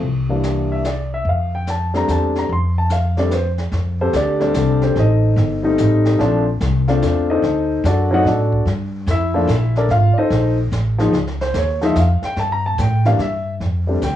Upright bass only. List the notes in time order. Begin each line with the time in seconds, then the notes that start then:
0.02 C2
1.25 F2
2.08 E2
2.49 F2
3.72 F2
4.13 D2
4.54 C2
4.96 A1
5.36 G1
5.78 A1
6.19 A#1
6.61 C2
7.02 E2
7.42 D2
7.84 F#2
8.25 A2
8.65 G2
9.06 F2
9.47 A#1
9.88 G#1
10.16 muted upright bass stroke
10.30 A#1
10.72 A1
11.13 C#2
11.54 D#2
11.95 F2
12.22 muted upright bass stroke
12.36 G2
12.78 A2
13.19 G2
13.60 F2
14.02 D2